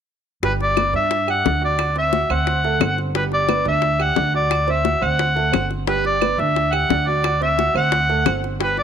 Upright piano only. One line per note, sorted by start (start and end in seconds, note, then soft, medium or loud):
0.43 0.71 G3 medium
0.43 0.71 G4 medium
0.78 0.91 B3 medium
0.78 0.92 B4 medium
0.94 1.22 D4 medium
0.94 1.22 D5 medium
1.28 1.42 G4 medium
1.28 1.42 G5 medium
1.44 1.59 D4 medium
1.44 1.59 D5 soft
1.61 1.89 F#4 medium
1.61 1.90 F#5 medium
1.96 2.10 C4 medium
1.96 2.10 C5 medium
2.13 2.27 F#4 medium
2.13 2.27 F#5 medium
2.30 2.58 C4 medium
2.30 2.58 C5 medium
2.64 2.78 A3 medium
2.64 2.78 A4 medium
2.81 3.09 C4 medium
2.81 3.09 C5 medium
3.15 3.43 G3 medium
3.15 3.43 G4 medium
3.49 3.63 B3 medium
3.49 3.63 B4 medium
3.66 3.94 D4 medium
3.66 3.94 D5 medium
3.99 4.14 G4 medium
3.99 4.14 G5 medium
4.17 4.31 D4 soft
4.17 4.31 D5 medium
4.34 4.62 F#4 medium
4.34 4.62 F#5 medium
4.67 4.82 C4 medium
4.67 4.82 C5 medium
4.84 4.99 F#4 medium
4.84 4.99 F#5 medium
5.01 5.30 C4 medium
5.01 5.30 C5 medium
5.36 5.50 A3 medium
5.36 5.50 A4 medium
5.52 5.81 C4 medium
5.52 5.81 C5 medium
5.87 6.15 G3 medium
5.87 6.15 G4 medium
6.22 6.36 B3 medium
6.22 6.36 B4 medium
6.39 6.67 D4 medium
6.39 6.67 D5 medium
6.73 6.87 G4 medium
6.73 6.87 G5 medium
6.90 7.04 D4 medium
6.90 7.04 D5 medium
7.07 7.35 F#4 medium
7.07 7.35 F#5 medium
7.41 7.55 C4 medium
7.41 7.55 C5 medium
7.58 7.72 F#4 medium
7.58 7.72 F#5 medium
7.75 8.03 C4 medium
7.75 8.03 C5 medium
8.09 8.23 A3 medium
8.09 8.23 A4 medium
8.26 8.54 C4 medium
8.26 8.54 C5 soft
8.60 8.83 G3 medium
8.60 8.83 G4 medium